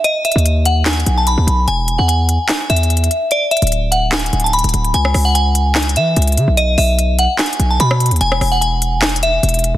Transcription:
<<
  \new Staff \with { instrumentName = "Synth bell" } { \time 4/4 \key cis \minor \tempo 4 = 147 dis''8 e''8 r8 fis''8 gis''8. a''16 b''4 | gis''8. fis''16 gis''4 gis''8 e''4. | d''8 e''8 r8 fis''8 gis''8. a''16 b''4 | gis''8. fis''16 gis''4 gis''8 e''4. |
dis''8 e''8 r8 fis''8 gis''8. a''16 b''4 | gis''8. fis''16 gis''4 gis''8 e''4. | }
  \new Staff \with { instrumentName = "808-style bass" } { \clef bass \time 4/4 \key cis \minor r8. dis,4.~ dis,16 b,,8. dis,16 b,,8 | e,,8. e,4 r8. e,4 r8 | r8. d,,4.~ d,,16 d,,8. d,,16 d,,8 | cis,8 cis,2 e8 cis,8 cis16 b,,16~ |
b,,8 b,,4~ b,,16 r8. b,,8 b,8. dis,16 | e,,8 e,,2~ e,,8 e,,8. d,,16 | }
  \new DrumStaff \with { instrumentName = "Drums" } \drummode { \time 4/4 \tuplet 3/2 { hh16 r16 r16 hh16 hh16 hh16 } hh8 hh8 \tuplet 3/2 { <hc hh sn>16 hh16 hh16 hh16 r16 r16 } hh8 hh8 | hh8 hh8 hh8 hh8 \tuplet 3/2 { <hc hh sn>16 r16 r16 hh16 hh16 hh16 hh16 hh16 hh16 hh16 r16 r16 } | hh8 hh32 hh32 hh32 hh32 hh8 hh8 \tuplet 3/2 { <hc hh sn>16 hh16 hh16 hh16 hh16 hh16 } hh32 hh32 hh32 hh32 hh16 hh16 | hh16 ss16 <hho ss>8 hh8 hh8 \tuplet 3/2 { <hc hh sn>16 hh16 hh16 hh16 r16 r16 } hh32 hh32 hh32 hh32 hh8 |
hh8 hho8 hh8 hh8 \tuplet 3/2 { <hc hh sn>16 hh16 hh16 hh16 r16 r16 } hh16 ss16 hh32 hh32 hh32 hh32 | hh16 ss16 <hho ss>8 hh8 hh8 \tuplet 3/2 { <hc hh sn>16 hh16 hh16 hh16 r16 r16 } hh32 hh32 hh32 hh32 hh8 | }
>>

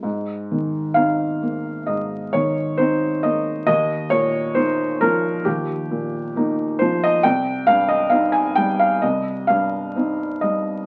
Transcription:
<<
  \new Staff \with { instrumentName = "Felt piano" } { \time 4/4 \key aes \major \tempo 4 = 67 r4 f''4 ees''8 des''8 c''8 ees''8 | ees''8 des''8 c''8 bes'8 g'4. c''16 ees''16 | g''8 f''16 ees''16 f''16 aes''16 g''16 f''16 ees''8 f''4 ees''8 | }
  \new Staff \with { instrumentName = "Felt piano" } { \clef bass \time 4/4 \key aes \major aes,8 ees8 <c' ees'>8 bes8 aes,8 ees8 <c' ees'>8 bes8 | ees,8 bes,8 <bes ees'>8 f8 ees,8 bes,8 <bes ees'>8 f8 | c,8 g,8 <c' ees'>8 g8 c,8 g,8 <c' ees'>8 g8 | }
>>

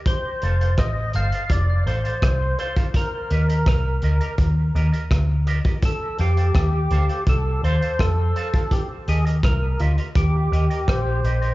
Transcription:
<<
  \new Staff \with { instrumentName = "Clean electric guitar" } { \time 4/4 \key f \dorian \tempo 4 = 83 r8 <a' c'' f''>16 <a' c'' f''>16 r8 <a' c'' f''>16 <a' c'' f''>16 r8 <a' c'' f''>16 <a' c'' f''>16 r8 <a' c'' f''>16 <a' c'' f''>16 | r8 <g' bes' ees''>16 <g' bes' ees''>16 r8 <g' bes' ees''>16 <g' bes' ees''>16 r8 <g' bes' ees''>16 <g' bes' ees''>16 r8 <g' bes' ees''>16 <g' bes' ees''>16 | r8 <a' c'' f''>16 <a' c'' f''>16 r8 <a' c'' f''>16 <a' c'' f''>16 r8 <a' c'' f''>16 <a' c'' f''>16 r8 <a' c'' f''>16 <a' c'' f''>16 | r8 <g' bes' ees''>16 <g' bes' ees''>16 r8 <g' bes' ees''>16 <g' bes' ees''>16 r8 <g' bes' ees''>16 <g' bes' ees''>16 r8 <g' bes' ees''>16 <g' bes' ees''>16 | }
  \new Staff \with { instrumentName = "Tonewheel organ" } { \time 4/4 \key f \dorian c''4 ees''8 f''8 d''8 c''4 c''8 | bes'4 bes'4 r2 | a'8 g'4. a'8 c''8 a'4 | g'8 aes'8 bes'8 f'8 g'4 c''4 | }
  \new Staff \with { instrumentName = "Fingered electric bass" } { \clef bass \time 4/4 \key f \dorian r8 f,,8 a,,8 g,,16 r16 f,,8 a,,16 r16 c,8 r8 | r8 ees,8 c,8 d,16 r16 ees,8 ees,16 r16 d,8. r16 | r8 f,8 ees,8 d,16 r16 c,8 ees,16 r16 f,8 r8 | r8 ees,8 c,8 d,16 r16 ees,8 ees,16 r16 bes,,8 bes,,8 | }
  \new DrumStaff \with { instrumentName = "Drums" } \drummode { \time 4/4 <hh bd>8 hh16 hh16 <hh bd ss>8 hh16 hh16 <hh bd>8 hh16 hh16 <hh bd ss>8 hh16 <hh bd>16 | <hh bd>8 hh16 hh16 <hh bd ss>8 hh16 hh16 <hh bd>8 hh16 hh16 <hh bd ss>8 hh16 <hh bd>16 | <hh bd>8 hh16 hh16 <hh bd ss>8 hh16 hh16 <hh bd>8 hh16 hh16 <hh bd ss>8 hh16 <hh bd>16 | <hh bd>8 hh16 hh16 <hh bd ss>8 hh16 hh16 <hh bd>8 hh16 hh16 <hh bd ss>8 hh16 hh16 | }
>>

